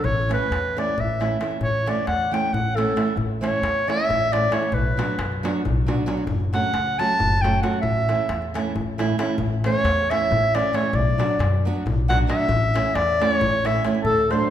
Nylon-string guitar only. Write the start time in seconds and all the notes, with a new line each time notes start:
0.29 E3 A3 C#4 E4
0.76 E3 A3 C#4 E4
1.20 E3 A3 C#4 E4
1.40 E3 A3 C#4 E4
1.86 E3 A3 C#4 E4
2.31 E3 A3 C#4 E4
2.77 E3 A3 C#4 E4
2.96 E3 A3 C#4 E4
3.41 E3 A3 C#4 E4
3.87 E3 A3 C#4 E4
4.32 E3 A3 C#4 E4
4.51 E3 A3 C#4 E4
4.97 F#3 B3 D4 F#4
5.43 F#3 B3 D4 F#4
5.87 F#3 B3 D4 F#4
6.06 F#3 B3 D4 F#4
6.53 F#3 A3 C#4 F#4
6.99 F#3 A3 C#4 F#4
7.43 F#3 A3 C#4 F#4
7.63 F#3 A3 C#4 F#4
8.08 E3 A3 C#4 E4
8.54 E3 A3 C#4 E4
8.98 E3 A3 C#4 E4
9.18 E3 A3 C#4 E4
9.65 E3 A3 C#4 E4
10.10 E3 A3 C#4 E4
10.54 E3 A3 C#4 E4
10.73 E3 A3 C#4 E4
11.18 F#3 B3 D4 F#4
11.65 F#3 B3 D4 F#4
12.08 F#3 B3 D4 F#4
12.27 F#3 B3 D4 F#4
12.74 E3 A3 C#4 E4
13.20 E3 A3 C#4 E4
13.65 E3 A3 C#4 E4
13.85 E3 A3 C#4 E4
14.30 F#3 A3 D4 F#4